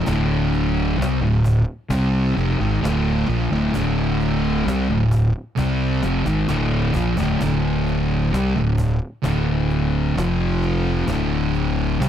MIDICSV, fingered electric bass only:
0, 0, Header, 1, 2, 480
1, 0, Start_track
1, 0, Key_signature, -1, "minor"
1, 0, Tempo, 918836
1, 33, Time_signature, 4, 2, 24, 8
1, 6315, End_track
2, 0, Start_track
2, 0, Title_t, "Fingered electric bass"
2, 0, Program_c, 0, 33
2, 35, Note_on_c, 0, 26, 96
2, 494, Note_off_c, 0, 26, 0
2, 514, Note_on_c, 0, 36, 93
2, 626, Note_off_c, 0, 36, 0
2, 635, Note_on_c, 0, 26, 76
2, 858, Note_off_c, 0, 26, 0
2, 994, Note_on_c, 0, 36, 98
2, 1218, Note_off_c, 0, 36, 0
2, 1239, Note_on_c, 0, 29, 96
2, 1349, Note_off_c, 0, 29, 0
2, 1360, Note_on_c, 0, 32, 90
2, 1469, Note_off_c, 0, 32, 0
2, 1478, Note_on_c, 0, 26, 96
2, 1700, Note_off_c, 0, 26, 0
2, 1720, Note_on_c, 0, 34, 94
2, 1830, Note_off_c, 0, 34, 0
2, 1838, Note_on_c, 0, 26, 93
2, 1948, Note_off_c, 0, 26, 0
2, 1954, Note_on_c, 0, 26, 95
2, 2414, Note_off_c, 0, 26, 0
2, 2436, Note_on_c, 0, 36, 92
2, 2548, Note_off_c, 0, 36, 0
2, 2558, Note_on_c, 0, 26, 77
2, 2780, Note_off_c, 0, 26, 0
2, 2915, Note_on_c, 0, 36, 96
2, 3138, Note_off_c, 0, 36, 0
2, 3154, Note_on_c, 0, 29, 94
2, 3266, Note_off_c, 0, 29, 0
2, 3274, Note_on_c, 0, 32, 88
2, 3386, Note_off_c, 0, 32, 0
2, 3394, Note_on_c, 0, 26, 92
2, 3618, Note_off_c, 0, 26, 0
2, 3634, Note_on_c, 0, 34, 91
2, 3746, Note_off_c, 0, 34, 0
2, 3756, Note_on_c, 0, 26, 98
2, 3867, Note_off_c, 0, 26, 0
2, 3870, Note_on_c, 0, 26, 97
2, 4331, Note_off_c, 0, 26, 0
2, 4352, Note_on_c, 0, 36, 93
2, 4464, Note_off_c, 0, 36, 0
2, 4471, Note_on_c, 0, 26, 80
2, 4695, Note_off_c, 0, 26, 0
2, 4829, Note_on_c, 0, 26, 91
2, 5289, Note_off_c, 0, 26, 0
2, 5310, Note_on_c, 0, 29, 90
2, 5769, Note_off_c, 0, 29, 0
2, 5790, Note_on_c, 0, 26, 93
2, 6248, Note_off_c, 0, 26, 0
2, 6269, Note_on_c, 0, 36, 92
2, 6315, Note_off_c, 0, 36, 0
2, 6315, End_track
0, 0, End_of_file